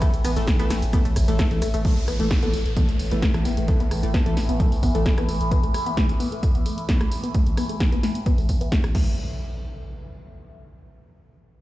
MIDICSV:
0, 0, Header, 1, 8, 480
1, 0, Start_track
1, 0, Tempo, 458015
1, 18, Time_signature, 4, 2, 24, 8
1, 12170, End_track
2, 0, Start_track
2, 0, Title_t, "Synth arpeggio sound"
2, 0, Program_c, 0, 84
2, 17, Note_on_c, 0, 57, 88
2, 113, Note_off_c, 0, 57, 0
2, 257, Note_on_c, 0, 59, 106
2, 321, Note_off_c, 0, 59, 0
2, 382, Note_on_c, 0, 57, 76
2, 470, Note_off_c, 0, 57, 0
2, 623, Note_on_c, 0, 59, 111
2, 682, Note_off_c, 0, 59, 0
2, 738, Note_on_c, 0, 57, 79
2, 834, Note_off_c, 0, 57, 0
2, 978, Note_on_c, 0, 59, 103
2, 1042, Note_off_c, 0, 59, 0
2, 1101, Note_on_c, 0, 57, 83
2, 1190, Note_off_c, 0, 57, 0
2, 1343, Note_on_c, 0, 57, 83
2, 1401, Note_off_c, 0, 57, 0
2, 1457, Note_on_c, 0, 69, 91
2, 1521, Note_off_c, 0, 69, 0
2, 1697, Note_on_c, 0, 57, 78
2, 1761, Note_off_c, 0, 57, 0
2, 1822, Note_on_c, 0, 57, 100
2, 1910, Note_off_c, 0, 57, 0
2, 1936, Note_on_c, 0, 57, 85
2, 2033, Note_off_c, 0, 57, 0
2, 2177, Note_on_c, 0, 59, 106
2, 2241, Note_off_c, 0, 59, 0
2, 2302, Note_on_c, 0, 57, 76
2, 2390, Note_off_c, 0, 57, 0
2, 2542, Note_on_c, 0, 59, 105
2, 2601, Note_off_c, 0, 59, 0
2, 2657, Note_on_c, 0, 57, 78
2, 2753, Note_off_c, 0, 57, 0
2, 2898, Note_on_c, 0, 59, 96
2, 2962, Note_off_c, 0, 59, 0
2, 3024, Note_on_c, 0, 57, 81
2, 3111, Note_off_c, 0, 57, 0
2, 3266, Note_on_c, 0, 59, 105
2, 3323, Note_off_c, 0, 59, 0
2, 3380, Note_on_c, 0, 57, 85
2, 3475, Note_off_c, 0, 57, 0
2, 3621, Note_on_c, 0, 59, 99
2, 3683, Note_off_c, 0, 59, 0
2, 3746, Note_on_c, 0, 57, 77
2, 3832, Note_off_c, 0, 57, 0
2, 3986, Note_on_c, 0, 59, 102
2, 4043, Note_off_c, 0, 59, 0
2, 4100, Note_on_c, 0, 57, 79
2, 4195, Note_off_c, 0, 57, 0
2, 4339, Note_on_c, 0, 59, 100
2, 4402, Note_off_c, 0, 59, 0
2, 4464, Note_on_c, 0, 57, 79
2, 4551, Note_off_c, 0, 57, 0
2, 4705, Note_on_c, 0, 59, 105
2, 4762, Note_off_c, 0, 59, 0
2, 4821, Note_on_c, 0, 57, 80
2, 4915, Note_off_c, 0, 57, 0
2, 5061, Note_on_c, 0, 59, 103
2, 5123, Note_off_c, 0, 59, 0
2, 5186, Note_on_c, 0, 57, 81
2, 5272, Note_off_c, 0, 57, 0
2, 5424, Note_on_c, 0, 59, 98
2, 5482, Note_off_c, 0, 59, 0
2, 5539, Note_on_c, 0, 57, 76
2, 5634, Note_off_c, 0, 57, 0
2, 5780, Note_on_c, 0, 59, 104
2, 5843, Note_off_c, 0, 59, 0
2, 5904, Note_on_c, 0, 57, 74
2, 5991, Note_off_c, 0, 57, 0
2, 6145, Note_on_c, 0, 59, 100
2, 6202, Note_off_c, 0, 59, 0
2, 6259, Note_on_c, 0, 57, 83
2, 6354, Note_off_c, 0, 57, 0
2, 6499, Note_on_c, 0, 59, 106
2, 6562, Note_off_c, 0, 59, 0
2, 6625, Note_on_c, 0, 57, 78
2, 6712, Note_off_c, 0, 57, 0
2, 6864, Note_on_c, 0, 59, 104
2, 6922, Note_off_c, 0, 59, 0
2, 6979, Note_on_c, 0, 57, 80
2, 7074, Note_off_c, 0, 57, 0
2, 7220, Note_on_c, 0, 59, 107
2, 7283, Note_off_c, 0, 59, 0
2, 7345, Note_on_c, 0, 57, 75
2, 7432, Note_off_c, 0, 57, 0
2, 7583, Note_on_c, 0, 59, 95
2, 7642, Note_off_c, 0, 59, 0
2, 7699, Note_on_c, 0, 57, 88
2, 7794, Note_off_c, 0, 57, 0
2, 7939, Note_on_c, 0, 59, 106
2, 8003, Note_off_c, 0, 59, 0
2, 8064, Note_on_c, 0, 57, 77
2, 8151, Note_off_c, 0, 57, 0
2, 8304, Note_on_c, 0, 59, 104
2, 8362, Note_off_c, 0, 59, 0
2, 8419, Note_on_c, 0, 57, 78
2, 8514, Note_off_c, 0, 57, 0
2, 8659, Note_on_c, 0, 59, 100
2, 8722, Note_off_c, 0, 59, 0
2, 8784, Note_on_c, 0, 57, 77
2, 8871, Note_off_c, 0, 57, 0
2, 9023, Note_on_c, 0, 59, 104
2, 9082, Note_off_c, 0, 59, 0
2, 9137, Note_on_c, 0, 57, 88
2, 9233, Note_off_c, 0, 57, 0
2, 9378, Note_on_c, 0, 57, 95
2, 9601, Note_off_c, 0, 57, 0
2, 12170, End_track
3, 0, Start_track
3, 0, Title_t, "Synth stab"
3, 0, Program_c, 1, 62
3, 17, Note_on_c, 1, 52, 90
3, 18, Note_on_c, 1, 57, 83
3, 18, Note_on_c, 1, 69, 96
3, 134, Note_off_c, 1, 52, 0
3, 135, Note_off_c, 1, 57, 0
3, 135, Note_off_c, 1, 69, 0
3, 383, Note_on_c, 1, 52, 92
3, 383, Note_on_c, 1, 57, 85
3, 383, Note_on_c, 1, 69, 109
3, 490, Note_off_c, 1, 52, 0
3, 490, Note_off_c, 1, 57, 0
3, 490, Note_off_c, 1, 69, 0
3, 622, Note_on_c, 1, 52, 99
3, 622, Note_on_c, 1, 69, 112
3, 623, Note_on_c, 1, 57, 92
3, 730, Note_off_c, 1, 52, 0
3, 730, Note_off_c, 1, 57, 0
3, 730, Note_off_c, 1, 69, 0
3, 978, Note_on_c, 1, 52, 86
3, 978, Note_on_c, 1, 57, 79
3, 978, Note_on_c, 1, 69, 100
3, 1095, Note_off_c, 1, 52, 0
3, 1095, Note_off_c, 1, 57, 0
3, 1095, Note_off_c, 1, 69, 0
3, 1343, Note_on_c, 1, 69, 110
3, 1344, Note_on_c, 1, 52, 100
3, 1344, Note_on_c, 1, 57, 92
3, 1519, Note_off_c, 1, 57, 0
3, 1519, Note_off_c, 1, 69, 0
3, 1520, Note_off_c, 1, 52, 0
3, 1583, Note_on_c, 1, 52, 78
3, 1584, Note_on_c, 1, 57, 72
3, 1584, Note_on_c, 1, 69, 88
3, 1690, Note_off_c, 1, 52, 0
3, 1690, Note_off_c, 1, 57, 0
3, 1690, Note_off_c, 1, 69, 0
3, 1939, Note_on_c, 1, 52, 87
3, 1939, Note_on_c, 1, 69, 101
3, 1940, Note_on_c, 1, 57, 80
3, 2055, Note_off_c, 1, 52, 0
3, 2056, Note_off_c, 1, 57, 0
3, 2056, Note_off_c, 1, 69, 0
3, 2304, Note_on_c, 1, 52, 93
3, 2304, Note_on_c, 1, 57, 85
3, 2304, Note_on_c, 1, 69, 103
3, 2410, Note_off_c, 1, 52, 0
3, 2410, Note_off_c, 1, 57, 0
3, 2410, Note_off_c, 1, 69, 0
3, 2545, Note_on_c, 1, 52, 99
3, 2545, Note_on_c, 1, 57, 91
3, 2545, Note_on_c, 1, 69, 104
3, 2651, Note_off_c, 1, 52, 0
3, 2651, Note_off_c, 1, 57, 0
3, 2651, Note_off_c, 1, 69, 0
3, 2899, Note_on_c, 1, 52, 87
3, 2899, Note_on_c, 1, 57, 76
3, 2899, Note_on_c, 1, 69, 93
3, 3015, Note_off_c, 1, 52, 0
3, 3015, Note_off_c, 1, 57, 0
3, 3015, Note_off_c, 1, 69, 0
3, 3264, Note_on_c, 1, 52, 98
3, 3264, Note_on_c, 1, 57, 90
3, 3264, Note_on_c, 1, 69, 107
3, 3440, Note_off_c, 1, 52, 0
3, 3440, Note_off_c, 1, 57, 0
3, 3440, Note_off_c, 1, 69, 0
3, 3504, Note_on_c, 1, 52, 77
3, 3504, Note_on_c, 1, 57, 69
3, 3504, Note_on_c, 1, 69, 84
3, 3610, Note_off_c, 1, 52, 0
3, 3610, Note_off_c, 1, 69, 0
3, 3611, Note_off_c, 1, 57, 0
3, 3859, Note_on_c, 1, 52, 89
3, 3859, Note_on_c, 1, 57, 83
3, 3859, Note_on_c, 1, 69, 99
3, 3975, Note_off_c, 1, 52, 0
3, 3975, Note_off_c, 1, 57, 0
3, 3975, Note_off_c, 1, 69, 0
3, 4224, Note_on_c, 1, 52, 98
3, 4224, Note_on_c, 1, 69, 105
3, 4225, Note_on_c, 1, 57, 83
3, 4331, Note_off_c, 1, 52, 0
3, 4331, Note_off_c, 1, 57, 0
3, 4331, Note_off_c, 1, 69, 0
3, 4464, Note_on_c, 1, 57, 86
3, 4465, Note_on_c, 1, 52, 101
3, 4465, Note_on_c, 1, 69, 110
3, 4571, Note_off_c, 1, 52, 0
3, 4571, Note_off_c, 1, 57, 0
3, 4571, Note_off_c, 1, 69, 0
3, 4818, Note_on_c, 1, 57, 75
3, 4818, Note_on_c, 1, 69, 92
3, 4819, Note_on_c, 1, 52, 84
3, 4935, Note_off_c, 1, 52, 0
3, 4935, Note_off_c, 1, 57, 0
3, 4935, Note_off_c, 1, 69, 0
3, 5185, Note_on_c, 1, 52, 104
3, 5185, Note_on_c, 1, 57, 91
3, 5186, Note_on_c, 1, 69, 106
3, 5360, Note_off_c, 1, 52, 0
3, 5360, Note_off_c, 1, 57, 0
3, 5360, Note_off_c, 1, 69, 0
3, 5425, Note_on_c, 1, 52, 75
3, 5425, Note_on_c, 1, 57, 67
3, 5425, Note_on_c, 1, 69, 83
3, 5531, Note_off_c, 1, 52, 0
3, 5531, Note_off_c, 1, 57, 0
3, 5531, Note_off_c, 1, 69, 0
3, 12170, End_track
4, 0, Start_track
4, 0, Title_t, "Synth drone"
4, 0, Program_c, 2, 95
4, 0, Note_on_c, 2, 45, 83
4, 0, Note_on_c, 2, 52, 82
4, 1924, Note_off_c, 2, 45, 0
4, 1925, Note_off_c, 2, 52, 0
4, 1937, Note_on_c, 2, 45, 83
4, 1937, Note_on_c, 2, 52, 83
4, 9668, Note_off_c, 2, 45, 0
4, 9668, Note_off_c, 2, 52, 0
4, 12170, End_track
5, 0, Start_track
5, 0, Title_t, "Sub bass"
5, 0, Program_c, 3, 38
5, 257, Note_on_c, 3, 33, 99
5, 376, Note_off_c, 3, 33, 0
5, 382, Note_on_c, 3, 33, 83
5, 495, Note_off_c, 3, 33, 0
5, 738, Note_on_c, 3, 33, 100
5, 857, Note_off_c, 3, 33, 0
5, 863, Note_on_c, 3, 33, 86
5, 976, Note_off_c, 3, 33, 0
5, 1217, Note_on_c, 3, 33, 105
5, 1337, Note_off_c, 3, 33, 0
5, 1343, Note_on_c, 3, 33, 82
5, 1456, Note_off_c, 3, 33, 0
5, 1697, Note_on_c, 3, 33, 99
5, 1817, Note_off_c, 3, 33, 0
5, 1823, Note_on_c, 3, 33, 80
5, 1936, Note_off_c, 3, 33, 0
5, 2179, Note_on_c, 3, 33, 102
5, 2297, Note_off_c, 3, 33, 0
5, 2304, Note_on_c, 3, 33, 81
5, 2416, Note_off_c, 3, 33, 0
5, 2657, Note_on_c, 3, 33, 103
5, 2778, Note_off_c, 3, 33, 0
5, 2784, Note_on_c, 3, 33, 83
5, 2896, Note_off_c, 3, 33, 0
5, 3139, Note_on_c, 3, 33, 102
5, 3258, Note_off_c, 3, 33, 0
5, 3264, Note_on_c, 3, 33, 81
5, 3376, Note_off_c, 3, 33, 0
5, 3619, Note_on_c, 3, 33, 96
5, 3739, Note_off_c, 3, 33, 0
5, 3745, Note_on_c, 3, 33, 78
5, 3857, Note_off_c, 3, 33, 0
5, 4099, Note_on_c, 3, 33, 101
5, 4218, Note_off_c, 3, 33, 0
5, 4225, Note_on_c, 3, 33, 84
5, 4337, Note_off_c, 3, 33, 0
5, 4580, Note_on_c, 3, 33, 100
5, 4699, Note_off_c, 3, 33, 0
5, 4705, Note_on_c, 3, 33, 83
5, 4817, Note_off_c, 3, 33, 0
5, 5060, Note_on_c, 3, 33, 101
5, 5178, Note_off_c, 3, 33, 0
5, 5185, Note_on_c, 3, 33, 80
5, 5296, Note_off_c, 3, 33, 0
5, 5538, Note_on_c, 3, 33, 97
5, 5659, Note_off_c, 3, 33, 0
5, 5665, Note_on_c, 3, 33, 79
5, 5777, Note_off_c, 3, 33, 0
5, 12170, End_track
6, 0, Start_track
6, 0, Title_t, "Downlifter"
6, 0, Program_c, 4, 103
6, 1938, Note_on_c, 4, 60, 77
6, 5778, Note_off_c, 4, 60, 0
6, 12170, End_track
7, 0, Start_track
7, 0, Title_t, "Impact"
7, 0, Program_c, 5, 103
7, 9378, Note_on_c, 5, 60, 69
7, 11298, Note_off_c, 5, 60, 0
7, 12170, End_track
8, 0, Start_track
8, 0, Title_t, "Drums"
8, 17, Note_on_c, 9, 36, 120
8, 17, Note_on_c, 9, 37, 91
8, 17, Note_on_c, 9, 42, 80
8, 17, Note_on_c, 9, 82, 41
8, 122, Note_off_c, 9, 36, 0
8, 122, Note_off_c, 9, 37, 0
8, 122, Note_off_c, 9, 42, 0
8, 122, Note_off_c, 9, 82, 0
8, 143, Note_on_c, 9, 42, 54
8, 143, Note_on_c, 9, 82, 30
8, 247, Note_off_c, 9, 42, 0
8, 247, Note_off_c, 9, 82, 0
8, 258, Note_on_c, 9, 37, 64
8, 258, Note_on_c, 9, 46, 109
8, 258, Note_on_c, 9, 51, 84
8, 258, Note_on_c, 9, 82, 74
8, 363, Note_off_c, 9, 37, 0
8, 363, Note_off_c, 9, 46, 0
8, 363, Note_off_c, 9, 51, 0
8, 363, Note_off_c, 9, 82, 0
8, 382, Note_on_c, 9, 42, 57
8, 382, Note_on_c, 9, 82, 32
8, 487, Note_off_c, 9, 42, 0
8, 487, Note_off_c, 9, 82, 0
8, 497, Note_on_c, 9, 36, 121
8, 497, Note_on_c, 9, 37, 89
8, 497, Note_on_c, 9, 38, 122
8, 497, Note_on_c, 9, 42, 81
8, 497, Note_on_c, 9, 82, 42
8, 602, Note_off_c, 9, 36, 0
8, 602, Note_off_c, 9, 37, 0
8, 602, Note_off_c, 9, 38, 0
8, 602, Note_off_c, 9, 42, 0
8, 602, Note_off_c, 9, 82, 0
8, 623, Note_on_c, 9, 42, 57
8, 623, Note_on_c, 9, 82, 31
8, 728, Note_off_c, 9, 42, 0
8, 728, Note_off_c, 9, 82, 0
8, 738, Note_on_c, 9, 37, 93
8, 738, Note_on_c, 9, 38, 66
8, 738, Note_on_c, 9, 46, 93
8, 738, Note_on_c, 9, 51, 88
8, 738, Note_on_c, 9, 82, 75
8, 843, Note_off_c, 9, 37, 0
8, 843, Note_off_c, 9, 38, 0
8, 843, Note_off_c, 9, 46, 0
8, 843, Note_off_c, 9, 51, 0
8, 843, Note_off_c, 9, 82, 0
8, 863, Note_on_c, 9, 42, 56
8, 863, Note_on_c, 9, 82, 31
8, 968, Note_off_c, 9, 42, 0
8, 968, Note_off_c, 9, 82, 0
8, 977, Note_on_c, 9, 36, 119
8, 977, Note_on_c, 9, 37, 66
8, 977, Note_on_c, 9, 42, 86
8, 977, Note_on_c, 9, 82, 43
8, 1081, Note_off_c, 9, 37, 0
8, 1081, Note_off_c, 9, 42, 0
8, 1081, Note_off_c, 9, 82, 0
8, 1082, Note_off_c, 9, 36, 0
8, 1103, Note_on_c, 9, 42, 53
8, 1103, Note_on_c, 9, 82, 29
8, 1208, Note_off_c, 9, 42, 0
8, 1208, Note_off_c, 9, 82, 0
8, 1217, Note_on_c, 9, 36, 61
8, 1217, Note_on_c, 9, 37, 86
8, 1217, Note_on_c, 9, 46, 106
8, 1217, Note_on_c, 9, 51, 83
8, 1217, Note_on_c, 9, 82, 72
8, 1322, Note_off_c, 9, 36, 0
8, 1322, Note_off_c, 9, 37, 0
8, 1322, Note_off_c, 9, 46, 0
8, 1322, Note_off_c, 9, 51, 0
8, 1322, Note_off_c, 9, 82, 0
8, 1343, Note_on_c, 9, 42, 55
8, 1343, Note_on_c, 9, 82, 34
8, 1448, Note_off_c, 9, 42, 0
8, 1448, Note_off_c, 9, 82, 0
8, 1457, Note_on_c, 9, 37, 94
8, 1457, Note_on_c, 9, 38, 127
8, 1457, Note_on_c, 9, 42, 81
8, 1457, Note_on_c, 9, 82, 43
8, 1458, Note_on_c, 9, 36, 120
8, 1562, Note_off_c, 9, 36, 0
8, 1562, Note_off_c, 9, 37, 0
8, 1562, Note_off_c, 9, 38, 0
8, 1562, Note_off_c, 9, 42, 0
8, 1562, Note_off_c, 9, 82, 0
8, 1582, Note_on_c, 9, 42, 54
8, 1687, Note_off_c, 9, 42, 0
8, 1697, Note_on_c, 9, 37, 64
8, 1697, Note_on_c, 9, 46, 92
8, 1697, Note_on_c, 9, 51, 82
8, 1697, Note_on_c, 9, 82, 76
8, 1802, Note_off_c, 9, 37, 0
8, 1802, Note_off_c, 9, 46, 0
8, 1802, Note_off_c, 9, 51, 0
8, 1802, Note_off_c, 9, 82, 0
8, 1822, Note_on_c, 9, 42, 56
8, 1822, Note_on_c, 9, 82, 33
8, 1927, Note_off_c, 9, 42, 0
8, 1927, Note_off_c, 9, 82, 0
8, 1937, Note_on_c, 9, 42, 80
8, 1938, Note_on_c, 9, 36, 122
8, 2041, Note_off_c, 9, 42, 0
8, 2043, Note_off_c, 9, 36, 0
8, 2063, Note_on_c, 9, 42, 56
8, 2168, Note_off_c, 9, 42, 0
8, 2178, Note_on_c, 9, 37, 78
8, 2178, Note_on_c, 9, 46, 109
8, 2283, Note_off_c, 9, 37, 0
8, 2283, Note_off_c, 9, 46, 0
8, 2303, Note_on_c, 9, 42, 56
8, 2408, Note_off_c, 9, 42, 0
8, 2418, Note_on_c, 9, 36, 123
8, 2418, Note_on_c, 9, 38, 122
8, 2418, Note_on_c, 9, 42, 82
8, 2523, Note_off_c, 9, 36, 0
8, 2523, Note_off_c, 9, 38, 0
8, 2523, Note_off_c, 9, 42, 0
8, 2543, Note_on_c, 9, 42, 56
8, 2648, Note_off_c, 9, 42, 0
8, 2657, Note_on_c, 9, 46, 108
8, 2762, Note_off_c, 9, 46, 0
8, 2784, Note_on_c, 9, 42, 52
8, 2889, Note_off_c, 9, 42, 0
8, 2898, Note_on_c, 9, 42, 87
8, 2899, Note_on_c, 9, 36, 124
8, 3003, Note_off_c, 9, 42, 0
8, 3004, Note_off_c, 9, 36, 0
8, 3025, Note_on_c, 9, 42, 55
8, 3130, Note_off_c, 9, 42, 0
8, 3139, Note_on_c, 9, 46, 107
8, 3243, Note_off_c, 9, 46, 0
8, 3264, Note_on_c, 9, 42, 57
8, 3369, Note_off_c, 9, 42, 0
8, 3379, Note_on_c, 9, 36, 118
8, 3379, Note_on_c, 9, 38, 124
8, 3379, Note_on_c, 9, 42, 80
8, 3484, Note_off_c, 9, 36, 0
8, 3484, Note_off_c, 9, 38, 0
8, 3484, Note_off_c, 9, 42, 0
8, 3504, Note_on_c, 9, 37, 86
8, 3504, Note_on_c, 9, 42, 53
8, 3609, Note_off_c, 9, 37, 0
8, 3609, Note_off_c, 9, 42, 0
8, 3619, Note_on_c, 9, 46, 107
8, 3723, Note_off_c, 9, 46, 0
8, 3743, Note_on_c, 9, 42, 55
8, 3848, Note_off_c, 9, 42, 0
8, 3858, Note_on_c, 9, 42, 80
8, 3859, Note_on_c, 9, 36, 120
8, 3963, Note_off_c, 9, 42, 0
8, 3964, Note_off_c, 9, 36, 0
8, 3984, Note_on_c, 9, 42, 55
8, 4089, Note_off_c, 9, 42, 0
8, 4100, Note_on_c, 9, 37, 85
8, 4100, Note_on_c, 9, 46, 108
8, 4205, Note_off_c, 9, 37, 0
8, 4205, Note_off_c, 9, 46, 0
8, 4226, Note_on_c, 9, 42, 52
8, 4331, Note_off_c, 9, 42, 0
8, 4339, Note_on_c, 9, 36, 126
8, 4340, Note_on_c, 9, 38, 120
8, 4340, Note_on_c, 9, 42, 78
8, 4444, Note_off_c, 9, 36, 0
8, 4445, Note_off_c, 9, 38, 0
8, 4445, Note_off_c, 9, 42, 0
8, 4466, Note_on_c, 9, 42, 53
8, 4571, Note_off_c, 9, 42, 0
8, 4580, Note_on_c, 9, 38, 63
8, 4580, Note_on_c, 9, 46, 107
8, 4684, Note_off_c, 9, 38, 0
8, 4684, Note_off_c, 9, 46, 0
8, 4706, Note_on_c, 9, 42, 55
8, 4811, Note_off_c, 9, 42, 0
8, 4819, Note_on_c, 9, 36, 125
8, 4820, Note_on_c, 9, 42, 85
8, 4924, Note_off_c, 9, 36, 0
8, 4925, Note_off_c, 9, 42, 0
8, 4947, Note_on_c, 9, 46, 63
8, 5051, Note_off_c, 9, 46, 0
8, 5060, Note_on_c, 9, 36, 63
8, 5061, Note_on_c, 9, 46, 104
8, 5164, Note_off_c, 9, 36, 0
8, 5166, Note_off_c, 9, 46, 0
8, 5187, Note_on_c, 9, 42, 58
8, 5291, Note_off_c, 9, 42, 0
8, 5300, Note_on_c, 9, 36, 127
8, 5300, Note_on_c, 9, 38, 121
8, 5300, Note_on_c, 9, 42, 83
8, 5404, Note_off_c, 9, 36, 0
8, 5405, Note_off_c, 9, 38, 0
8, 5405, Note_off_c, 9, 42, 0
8, 5426, Note_on_c, 9, 37, 96
8, 5426, Note_on_c, 9, 42, 56
8, 5531, Note_off_c, 9, 37, 0
8, 5531, Note_off_c, 9, 42, 0
8, 5540, Note_on_c, 9, 46, 111
8, 5645, Note_off_c, 9, 46, 0
8, 5667, Note_on_c, 9, 42, 56
8, 5772, Note_off_c, 9, 42, 0
8, 5779, Note_on_c, 9, 36, 127
8, 5780, Note_on_c, 9, 42, 81
8, 5884, Note_off_c, 9, 36, 0
8, 5885, Note_off_c, 9, 42, 0
8, 5905, Note_on_c, 9, 42, 54
8, 6010, Note_off_c, 9, 42, 0
8, 6020, Note_on_c, 9, 37, 84
8, 6020, Note_on_c, 9, 46, 113
8, 6125, Note_off_c, 9, 37, 0
8, 6125, Note_off_c, 9, 46, 0
8, 6145, Note_on_c, 9, 42, 52
8, 6250, Note_off_c, 9, 42, 0
8, 6259, Note_on_c, 9, 36, 127
8, 6259, Note_on_c, 9, 38, 115
8, 6259, Note_on_c, 9, 42, 81
8, 6364, Note_off_c, 9, 36, 0
8, 6364, Note_off_c, 9, 38, 0
8, 6364, Note_off_c, 9, 42, 0
8, 6385, Note_on_c, 9, 42, 55
8, 6490, Note_off_c, 9, 42, 0
8, 6499, Note_on_c, 9, 46, 113
8, 6604, Note_off_c, 9, 46, 0
8, 6626, Note_on_c, 9, 42, 51
8, 6731, Note_off_c, 9, 42, 0
8, 6739, Note_on_c, 9, 36, 123
8, 6739, Note_on_c, 9, 42, 86
8, 6844, Note_off_c, 9, 36, 0
8, 6844, Note_off_c, 9, 42, 0
8, 6864, Note_on_c, 9, 42, 52
8, 6969, Note_off_c, 9, 42, 0
8, 6978, Note_on_c, 9, 46, 109
8, 7083, Note_off_c, 9, 46, 0
8, 7104, Note_on_c, 9, 42, 57
8, 7208, Note_off_c, 9, 42, 0
8, 7218, Note_on_c, 9, 38, 117
8, 7218, Note_on_c, 9, 42, 84
8, 7219, Note_on_c, 9, 36, 123
8, 7323, Note_off_c, 9, 38, 0
8, 7323, Note_off_c, 9, 42, 0
8, 7324, Note_off_c, 9, 36, 0
8, 7343, Note_on_c, 9, 37, 97
8, 7343, Note_on_c, 9, 42, 55
8, 7448, Note_off_c, 9, 37, 0
8, 7448, Note_off_c, 9, 42, 0
8, 7457, Note_on_c, 9, 46, 115
8, 7562, Note_off_c, 9, 46, 0
8, 7583, Note_on_c, 9, 42, 55
8, 7688, Note_off_c, 9, 42, 0
8, 7697, Note_on_c, 9, 42, 76
8, 7699, Note_on_c, 9, 36, 126
8, 7802, Note_off_c, 9, 42, 0
8, 7803, Note_off_c, 9, 36, 0
8, 7823, Note_on_c, 9, 42, 53
8, 7928, Note_off_c, 9, 42, 0
8, 7938, Note_on_c, 9, 37, 88
8, 7938, Note_on_c, 9, 46, 108
8, 8042, Note_off_c, 9, 37, 0
8, 8042, Note_off_c, 9, 46, 0
8, 8063, Note_on_c, 9, 42, 53
8, 8168, Note_off_c, 9, 42, 0
8, 8178, Note_on_c, 9, 36, 127
8, 8178, Note_on_c, 9, 38, 109
8, 8178, Note_on_c, 9, 42, 80
8, 8283, Note_off_c, 9, 36, 0
8, 8283, Note_off_c, 9, 38, 0
8, 8283, Note_off_c, 9, 42, 0
8, 8304, Note_on_c, 9, 42, 52
8, 8409, Note_off_c, 9, 42, 0
8, 8419, Note_on_c, 9, 38, 61
8, 8419, Note_on_c, 9, 46, 108
8, 8524, Note_off_c, 9, 38, 0
8, 8524, Note_off_c, 9, 46, 0
8, 8543, Note_on_c, 9, 42, 54
8, 8648, Note_off_c, 9, 42, 0
8, 8658, Note_on_c, 9, 36, 127
8, 8658, Note_on_c, 9, 42, 81
8, 8763, Note_off_c, 9, 36, 0
8, 8763, Note_off_c, 9, 42, 0
8, 8783, Note_on_c, 9, 46, 62
8, 8888, Note_off_c, 9, 46, 0
8, 8897, Note_on_c, 9, 46, 108
8, 8898, Note_on_c, 9, 36, 63
8, 9002, Note_off_c, 9, 46, 0
8, 9003, Note_off_c, 9, 36, 0
8, 9024, Note_on_c, 9, 42, 52
8, 9129, Note_off_c, 9, 42, 0
8, 9138, Note_on_c, 9, 36, 122
8, 9138, Note_on_c, 9, 38, 119
8, 9138, Note_on_c, 9, 42, 78
8, 9243, Note_off_c, 9, 36, 0
8, 9243, Note_off_c, 9, 38, 0
8, 9243, Note_off_c, 9, 42, 0
8, 9263, Note_on_c, 9, 37, 97
8, 9263, Note_on_c, 9, 42, 52
8, 9368, Note_off_c, 9, 37, 0
8, 9368, Note_off_c, 9, 42, 0
8, 9377, Note_on_c, 9, 49, 88
8, 9378, Note_on_c, 9, 36, 111
8, 9482, Note_off_c, 9, 49, 0
8, 9483, Note_off_c, 9, 36, 0
8, 12170, End_track
0, 0, End_of_file